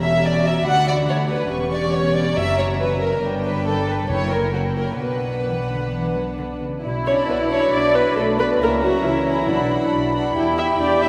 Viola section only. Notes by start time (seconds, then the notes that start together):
Already playing: C#4 F#4
0.67 D4
1.52 C#4 G4
2.38 F#4
3.23 B3 D4
4.11 A#3 E4
4.55 A#3 E4
5.00 B3 D4
7.06 C#5
7.28 B4
7.51 C#5
7.73 D5
7.94 B4
8.16 A4
8.40 B4
8.62 A#4
8.84 F#4
9.05 E4
10.57 E5
10.79 D5
11.00 E5